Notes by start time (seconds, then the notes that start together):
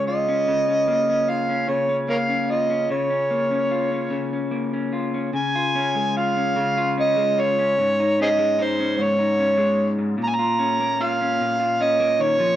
Already playing: C#3 G#3 C#4
0.07 F4 D#5
0.28 C#4
0.48 C#3
0.68 C#4
0.88 A#3
1.10 C#4
1.28 F4 F5
1.49 C#4
1.68 C#3 C#5
1.89 C#4
2.08 A#3 A#4 C#5 F5
2.29 C#4
2.50 F4 D#5
2.70 C#4
2.90 C#3 C#5
3.10 C#4
3.31 A#3
3.51 C#4
3.71 F4
3.92 C#4
4.11 C#3
4.33 C#4
4.51 A#3
4.73 C#4
4.93 F4
5.14 C#4
5.33 C#3 G#5
5.55 F4
5.75 C#4
5.95 G#3
6.17 F4 F5
6.37 C#4
6.56 C#3
6.77 F4
6.98 C#4 D#5
7.17 G#3
7.38 F4 C#5
7.59 C#4
7.79 G#2
8.00 D#4
8.20 C#4 G#4 C5 D#5
8.39 G#3
8.59 D#4
8.63 C5
8.80 C#4
8.96 G#2 C5
9.03 C#5
9.19 D#4
9.39 C#4
9.58 G#3
9.99 G#2
10.18 A#2
10.23 A#5
10.29 G#5
10.35 F4 A#5
10.59 C#4
10.80 A#3
11.01 F4 F5
11.21 C#4
11.40 A#2
11.60 F4
11.81 C#4 D#5
12.00 A#3
12.19 D#3 C#5
12.40 F3